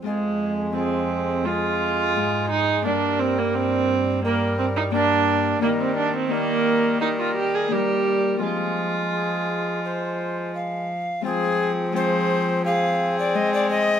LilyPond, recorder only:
\new Staff \with { instrumentName = "Recorder" } { \time 4/4 \key f \dorian \tempo 4 = 86 aes'4 aes'4 aes'2 | bes'2 bes'4 bes'4 | bes'4 bes'4 bes'4 bes'4 | aes'4 aes'4 c''4 f''4 |
aes'4 c''4 f''8. d''16 ees''16 d''16 ees''8 | }